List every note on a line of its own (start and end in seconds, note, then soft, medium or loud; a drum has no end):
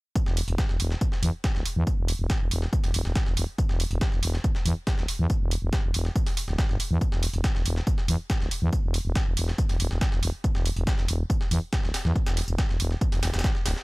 0.15 kick loud
0.15 tambourine medium
0.26 0.41 E1 medium
0.26 snare medium
0.37 open hi-hat loud
0.37 tambourine medium
0.48 0.55 E1 loud
0.48 closed hi-hat soft
0.58 kick loud
0.58 snare loud
0.58 tambourine medium
0.69 0.76 E1 medium
0.69 snare soft
0.80 0.95 E1 medium
0.80 open hi-hat loud
0.80 tambourine medium
0.91 snare soft
1.01 kick loud
1.01 tambourine medium
1.12 snare soft
1.23 1.30 E2 medium
1.23 open hi-hat loud
1.23 tambourine medium
1.44 kick loud
1.44 snare loud
1.44 tambourine medium
1.55 1.62 D1 medium
1.55 snare soft
1.65 open hi-hat loud
1.65 tambourine medium
1.76 1.84 E2 loud
1.87 kick loud
1.87 tambourine medium
1.98 2.12 E1 medium
2.08 open hi-hat loud
2.08 tambourine medium
2.19 2.26 E1 loud
2.30 kick loud
2.30 snare loud
2.30 tambourine medium
2.41 2.48 E1 medium
2.51 2.66 E1 medium
2.51 open hi-hat loud
2.51 tambourine medium
2.62 snare soft
2.73 kick loud
2.73 tambourine medium
2.84 2.91 E1 medium
2.84 snare soft
2.84 open hi-hat medium
2.94 3.02 E1 loud
2.94 open hi-hat loud
2.94 tambourine medium
3.05 3.12 E1 medium
3.05 snare soft
3.15 kick loud
3.15 snare loud
3.15 tambourine medium
3.26 3.34 E1 medium
3.26 snare soft
3.37 3.44 E1 loud
3.37 open hi-hat loud
3.37 tambourine medium
3.58 kick loud
3.58 tambourine medium
3.69 3.84 E1 loud
3.69 snare medium
3.80 open hi-hat loud
3.80 tambourine medium
3.91 3.98 E1 loud
3.91 closed hi-hat soft
4.01 kick loud
4.01 snare loud
4.01 tambourine medium
4.12 4.19 E1 medium
4.12 snare soft
4.23 4.37 E1 medium
4.23 open hi-hat loud
4.23 tambourine medium
4.34 snare soft
4.44 kick loud
4.44 tambourine medium
4.55 snare soft
4.66 4.73 E2 loud
4.66 open hi-hat loud
4.66 tambourine medium
4.87 kick loud
4.87 snare loud
4.87 tambourine medium
4.98 5.05 D1 medium
4.98 snare soft
5.08 open hi-hat loud
5.08 tambourine medium
5.19 5.27 E2 loud
5.30 kick loud
5.30 tambourine medium
5.41 5.55 E1 loud
5.51 open hi-hat loud
5.51 tambourine medium
5.62 5.69 E1 loud
5.73 kick loud
5.73 snare loud
5.73 tambourine medium
5.84 5.91 E1 medium
5.94 6.09 E1 medium
5.94 open hi-hat loud
5.94 tambourine medium
6.05 snare soft
6.16 kick loud
6.16 tambourine medium
6.26 snare soft
6.26 open hi-hat medium
6.37 open hi-hat loud
6.37 tambourine medium
6.48 6.55 D1 medium
6.48 snare soft
6.58 kick loud
6.58 snare loud
6.58 tambourine medium
6.69 6.76 G1 medium
6.69 snare soft
6.80 open hi-hat loud
6.80 tambourine medium
6.91 6.98 E2 loud
7.01 kick loud
7.01 tambourine medium
7.12 7.27 E1 medium
7.12 snare medium
7.23 open hi-hat loud
7.23 tambourine medium
7.33 7.41 E1 medium
7.33 closed hi-hat soft
7.44 kick loud
7.44 snare loud
7.44 tambourine medium
7.55 7.62 E1 medium
7.55 snare soft
7.65 7.80 E1 medium
7.65 open hi-hat loud
7.65 tambourine medium
7.76 snare soft
7.87 kick loud
7.87 tambourine medium
7.98 snare soft
8.08 8.16 E2 loud
8.08 open hi-hat loud
8.08 tambourine medium
8.30 kick loud
8.30 snare loud
8.30 tambourine medium
8.41 8.48 D1 medium
8.41 snare soft
8.51 open hi-hat loud
8.51 tambourine medium
8.62 8.69 E2 loud
8.73 kick loud
8.73 tambourine medium
8.84 8.98 E1 loud
8.94 open hi-hat loud
8.94 tambourine medium
9.05 9.12 E1 loud
9.15 kick loud
9.15 snare loud
9.15 tambourine medium
9.26 9.34 E1 medium
9.37 9.52 E1 medium
9.37 open hi-hat loud
9.37 tambourine medium
9.48 snare soft
9.58 kick loud
9.58 tambourine medium
9.69 9.76 E1 medium
9.69 snare soft
9.69 open hi-hat medium
9.80 9.87 E1 loud
9.80 open hi-hat loud
9.80 tambourine medium
9.91 9.98 E1 medium
9.91 snare soft
10.01 kick loud
10.01 snare loud
10.01 tambourine medium
10.12 10.19 E1 medium
10.12 snare soft
10.23 10.30 E1 loud
10.23 open hi-hat medium
10.23 tambourine medium
10.44 kick loud
10.44 tambourine medium
10.55 10.70 E1 loud
10.55 snare medium
10.66 open hi-hat loud
10.66 tambourine medium
10.76 10.84 E1 loud
10.76 closed hi-hat soft
10.87 kick loud
10.87 snare loud
10.87 tambourine medium
10.98 11.05 E1 medium
10.98 snare soft
11.08 11.23 E1 medium
11.08 open hi-hat loud
11.08 tambourine medium
11.30 kick loud
11.30 tambourine medium
11.41 snare soft
11.51 11.59 E2 medium
11.51 open hi-hat loud
11.51 tambourine medium
11.73 kick loud
11.73 snare loud
11.73 tambourine medium
11.84 11.91 D1 medium
11.84 snare soft
11.94 snare loud
11.94 open hi-hat medium
11.94 tambourine medium
12.05 12.12 E2 loud
12.05 snare soft
12.16 kick loud
12.16 tambourine medium
12.26 12.41 E1 medium
12.26 snare loud
12.26 tambourine medium
12.37 snare soft
12.37 open hi-hat loud
12.48 12.55 E1 medium
12.48 tambourine medium
12.58 kick loud
12.58 snare loud
12.58 tambourine medium
12.69 12.77 E1 medium
12.69 snare soft
12.80 12.95 E1 medium
12.80 open hi-hat loud
12.80 tambourine medium
12.91 snare soft
13.01 kick loud
13.01 tambourine medium
13.12 13.19 E1 loud
13.12 snare soft
13.12 open hi-hat medium
13.23 13.30 E1 loud
13.23 snare loud
13.23 open hi-hat loud
13.23 tambourine medium
13.34 13.41 E1 medium
13.34 snare medium
13.34 tambourine medium
13.39 snare medium
13.39 tambourine medium
13.44 kick loud
13.44 snare loud
13.44 tambourine medium
13.55 snare soft
13.66 13.73 D1 medium
13.66 snare loud
13.66 open hi-hat loud
13.66 tambourine medium
13.76 snare soft